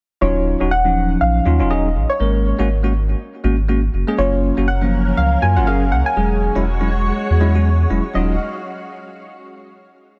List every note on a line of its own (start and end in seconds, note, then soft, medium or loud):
0.21 0.55 D#1 loud
0.21 0.57 F#3 medium
0.21 0.57 C#4 medium
0.21 0.57 D#4 medium
0.21 0.58 F4 medium
0.21 0.68 C#5 medium
0.60 1.16 D#1 medium
0.60 0.69 F#3 medium
0.60 0.69 C#4 medium
0.60 0.69 D#4 medium
0.60 0.69 F#4 medium
0.71 1.22 F#5 loud
0.84 1.44 F3 medium
0.84 1.43 F#3 medium
0.84 1.43 C#4 medium
0.84 1.43 D#4 medium
1.21 1.40 A#1 medium
1.21 1.72 F5 loud
1.45 1.61 D#2 loud
1.45 1.58 F#3 medium
1.45 1.58 C#4 medium
1.45 1.58 D#4 medium
1.45 1.58 F4 loud
1.59 1.97 D#1 medium
1.59 1.69 F#3 medium
1.59 1.69 C#4 medium
1.59 1.69 D#4 medium
1.59 1.69 F4 medium
1.70 1.87 F#3 medium
1.70 1.87 C#4 medium
1.70 1.87 D#4 medium
1.70 1.87 G#4 medium
1.70 2.11 D#5 medium
1.95 2.06 A#1 medium
2.10 3.54 C#5 medium
2.20 2.53 G#1 medium
2.20 2.55 G#3 medium
2.20 2.56 A#3 medium
2.20 2.56 C#4 medium
2.20 2.56 A#4 medium
2.59 3.15 G#1 medium
2.59 2.67 G#3 loud
2.59 2.67 A#3 medium
2.59 2.67 C#4 medium
2.59 2.67 F#4 loud
2.83 2.92 G#3 medium
2.83 2.92 A#3 medium
2.83 2.92 C#4 medium
2.83 2.92 F#4 medium
3.44 3.89 G#1 loud
3.44 3.55 G#3 medium
3.44 3.55 A#3 medium
3.44 3.55 C#4 medium
3.44 3.55 F#4 medium
3.68 3.79 G#3 medium
3.68 3.80 A#3 medium
3.68 3.80 C#4 medium
3.68 3.80 F#4 medium
3.94 4.04 F#1 medium
4.07 4.16 G#3 medium
4.07 4.16 A#3 medium
4.07 4.16 C#4 medium
4.07 4.16 G#4 medium
4.18 4.51 F#1 loud
4.18 4.54 F#3 medium
4.18 4.54 A#3 medium
4.18 6.15 A#3 medium
4.18 6.15 C#4 medium
4.18 4.54 C#4 medium
4.18 4.54 F4 loud
4.18 6.15 A#4 medium
4.18 4.69 C#5 medium
4.57 5.13 F#1 medium
4.57 4.65 F#3 medium
4.57 4.65 A#3 medium
4.57 4.65 C#4 medium
4.57 4.66 F#4 medium
4.68 5.19 F#5 loud
4.81 5.40 F3 medium
4.81 5.39 F#3 medium
4.81 5.40 A#3 medium
4.81 5.40 C#4 medium
5.17 5.37 C#2 medium
5.17 5.41 F5 loud
5.42 5.58 F#2 medium
5.42 5.54 F#3 medium
5.42 5.54 A#3 medium
5.42 5.54 C#4 medium
5.42 5.55 F4 loud
5.42 5.57 G#5 loud
5.56 5.93 F#1 medium
5.56 5.65 F#3 medium
5.56 5.65 A#3 medium
5.56 5.66 C#4 medium
5.56 5.66 F4 loud
5.56 5.67 F#5 medium
5.67 5.83 F#3 medium
5.67 5.84 A#3 medium
5.67 5.84 C#4 medium
5.67 5.84 G#4 medium
5.67 5.93 F5 loud
5.92 6.02 C#2 loud
5.92 6.05 F#5 loud
6.06 7.61 G#5 loud
6.16 6.50 E1 medium
6.16 6.52 F#3 medium
6.16 8.13 G#3 medium
6.16 6.52 G#3 medium
6.16 6.52 C#4 medium
6.16 8.13 F#4 medium
6.16 6.53 G#4 medium
6.16 8.13 C#5 loud
6.55 7.11 E1 medium
6.55 6.64 F#3 loud
6.55 6.64 G#3 medium
6.55 6.64 C#4 medium
6.55 6.64 E4 loud
6.80 6.88 F#3 medium
6.80 6.88 G#3 medium
6.80 6.89 C#4 medium
6.80 6.89 E4 medium
7.30 7.86 E2 medium
7.40 7.51 F#3 loud
7.40 7.51 G#3 medium
7.40 7.52 C#4 medium
7.40 7.52 E4 loud
7.54 7.68 F#3 medium
7.54 7.69 G#3 medium
7.54 7.69 C#4 medium
7.54 7.69 F#4 medium
7.90 8.01 E1 medium
7.90 8.01 F#3 medium
7.90 8.01 G#3 medium
7.90 8.01 C#4 medium
7.90 8.01 E4 medium
8.14 8.38 D#1 loud
8.14 8.33 F#3 medium
8.14 8.34 C#4 medium
8.14 8.34 D#4 medium
8.14 8.35 F4 medium
8.14 8.38 D#5 medium